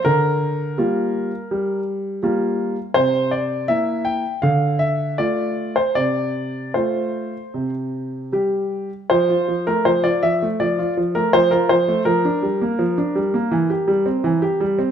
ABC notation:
X:1
M:4/4
L:1/16
Q:1/4=82
K:F
V:1 name="Grand piano"
B16 | c2 d2 e2 g2 f2 e2 d3 c | d4 c8 z4 | c3 B c d e2 d3 B c B c2 |
B16 |]
V:2 name="Grand piano"
D,4 [G,B,F]4 G,4 [G,B,F]4 | C,4 [B,E]4 D,4 [A,F]4 | C,4 [A,F]4 C,4 [G,G]4 | F, F F, A, F, F F, A, F, F F, A, F, F F, A, |
F, D G, B, F, D G, B, E, G G, C E, G G, C |]